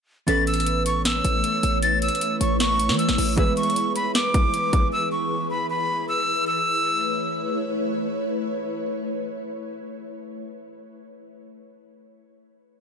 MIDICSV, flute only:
0, 0, Header, 1, 2, 480
1, 0, Start_track
1, 0, Key_signature, 3, "major"
1, 0, Tempo, 387097
1, 345, Time_signature, 4, 2, 24, 8
1, 15876, End_track
2, 0, Start_track
2, 0, Title_t, "Flute"
2, 0, Program_c, 0, 73
2, 340, Note_on_c, 0, 93, 95
2, 546, Note_off_c, 0, 93, 0
2, 584, Note_on_c, 0, 88, 90
2, 1036, Note_off_c, 0, 88, 0
2, 1067, Note_on_c, 0, 85, 90
2, 1270, Note_off_c, 0, 85, 0
2, 1304, Note_on_c, 0, 88, 90
2, 2215, Note_off_c, 0, 88, 0
2, 2265, Note_on_c, 0, 93, 101
2, 2469, Note_off_c, 0, 93, 0
2, 2511, Note_on_c, 0, 88, 81
2, 2959, Note_off_c, 0, 88, 0
2, 2982, Note_on_c, 0, 85, 80
2, 3187, Note_off_c, 0, 85, 0
2, 3222, Note_on_c, 0, 85, 101
2, 3674, Note_off_c, 0, 85, 0
2, 3700, Note_on_c, 0, 88, 83
2, 4154, Note_off_c, 0, 88, 0
2, 4183, Note_on_c, 0, 88, 95
2, 4387, Note_off_c, 0, 88, 0
2, 4421, Note_on_c, 0, 85, 105
2, 4874, Note_off_c, 0, 85, 0
2, 4907, Note_on_c, 0, 83, 93
2, 5110, Note_off_c, 0, 83, 0
2, 5144, Note_on_c, 0, 86, 94
2, 6055, Note_off_c, 0, 86, 0
2, 6107, Note_on_c, 0, 88, 96
2, 6310, Note_off_c, 0, 88, 0
2, 6344, Note_on_c, 0, 85, 78
2, 6796, Note_off_c, 0, 85, 0
2, 6824, Note_on_c, 0, 83, 83
2, 7028, Note_off_c, 0, 83, 0
2, 7070, Note_on_c, 0, 83, 92
2, 7519, Note_off_c, 0, 83, 0
2, 7547, Note_on_c, 0, 88, 86
2, 7997, Note_off_c, 0, 88, 0
2, 8024, Note_on_c, 0, 88, 96
2, 9415, Note_off_c, 0, 88, 0
2, 15876, End_track
0, 0, End_of_file